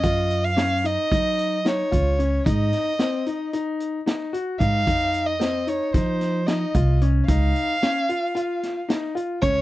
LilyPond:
<<
  \new Staff \with { instrumentName = "Violin" } { \time 9/8 \key aes \mixolydian \tempo 4. = 75 ees''8. f''8. ees''4. des''4. | ees''2 r2 f''8~ | f''8. ees''8. des''8 c''4 ees''4 r8 | f''2. r4 des''8 | }
  \new Staff \with { instrumentName = "Grand piano" } { \time 9/8 \key aes \mixolydian f'4 des'8 ees'8 ees'4 ees'8 f'8 des'8 | ees'4 c'8 ees'8 ees'4 ees'8 ges'8 ees'8 | ees'4 c'8 ees'8 ees'4 ees'8 f'8 des'8 | ees'4 des'8 f'8 f'4 ees'8 f'8 des'8 | }
  \new Staff \with { instrumentName = "Upright bass" } { \clef bass \time 9/8 \key aes \mixolydian ges,2 ges4. des,4 | aes,8 r2. r8 aes,8 | f,2 f4. c,4 | des,8 r2. r8 des,8 | }
  \new DrumStaff \with { instrumentName = "Drums" } \drummode { \time 9/8 <hh bd>8 hh8 <hh sn>8 hh8 <hh bd>8 hh8 <hh sn>8 <hh bd>8 hh8 | <hh bd>8 <hh sn>8 <hh sn>8 hh8 hh8 hh8 <hh sn>8 hh8 <hh bd>8 | <hh bd>8 hh8 <hh sn>8 hh8 <hh bd sn>8 <hh sn>8 <hh sn>8 <hh bd>8 hh8 | <hh bd>8 hh8 <hh sn>8 hh8 hh8 <hh sn>8 <hh sn>8 hh8 <hh bd>8 | }
>>